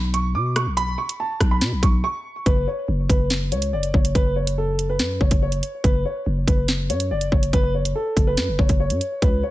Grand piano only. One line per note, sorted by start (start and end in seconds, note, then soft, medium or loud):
0.14 0.32 C#6 medium
0.35 0.54 D6 medium
0.56 0.75 C#6 medium
0.77 0.96 B5 loud
0.98 1.17 C#6 medium
1.20 1.49 A5 medium
1.51 1.81 B5 medium
1.83 2.01 C#6 medium
2.04 2.44 C#6 medium
2.46 2.65 B4 loud
2.67 2.86 C#5 medium
3.10 3.28 B4 medium
3.52 3.71 C#5 medium
3.73 3.92 D5 medium
3.95 4.13 C#5 medium
4.15 4.34 B4 loud
4.36 4.55 C#5 medium
4.58 4.87 A4 medium
4.89 5.19 B4 medium
5.21 5.39 C#5 medium
5.42 5.82 C#5 medium
5.84 6.03 B4 medium
6.05 6.24 C#5 medium
6.48 6.66 B4 medium
6.90 7.08 C#5 medium
7.11 7.30 D5 medium
7.32 7.51 C#5 medium
7.53 7.72 B4 loud
7.74 7.93 C#5 medium
7.95 8.25 A4 medium
8.27 8.57 B4 medium
8.59 8.78 C#5 medium
8.80 9.20 C#5 medium
9.22 9.41 B4 medium
9.43 9.51 C#5 medium